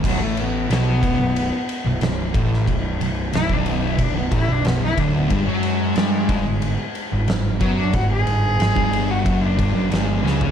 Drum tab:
CC |x---------------|----------------|----------------|----------------|
RD |--x-x-x-x-x-x-x-|x-x-x-x-x-x-x-x-|x-x-x-x-x-x-x-x-|x-x-x-x-x-x-x---|
SD |----o-------o--o|----o-------o---|----o-------o---|----o-------o-o-|
FT |----------------|----------------|----------------|---------------o|
BD |o-----o-------o-|o----o--o-o---o-|o-----o-------o-|o----o--o-o-----|